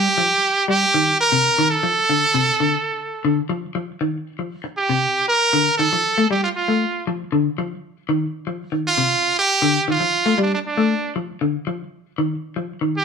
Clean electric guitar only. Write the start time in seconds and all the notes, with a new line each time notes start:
0.18 F3
0.68 G3
0.94 D#3
1.32 C3
1.58 D#3
1.83 F3
2.10 D3
2.34 C3
2.60 D3
3.25 D3
3.49 F3
3.75 F3
4.01 D#3
4.39 F3
4.64 muted clean electric guitar stroke
4.89 C3
5.53 D3
5.79 D#3
5.93 F3
6.18 A3
6.31 G3
6.68 A3
7.07 F3
7.32 D3
7.58 F3
8.09 D#3
8.47 F3
8.72 D#3
8.98 C3
9.62 D3
9.88 D#3
10.00 F3
10.26 A3
10.38 G3
10.77 A3
11.16 F3
11.41 D3
11.67 F3
12.18 D#3
12.56 F3
12.81 D#3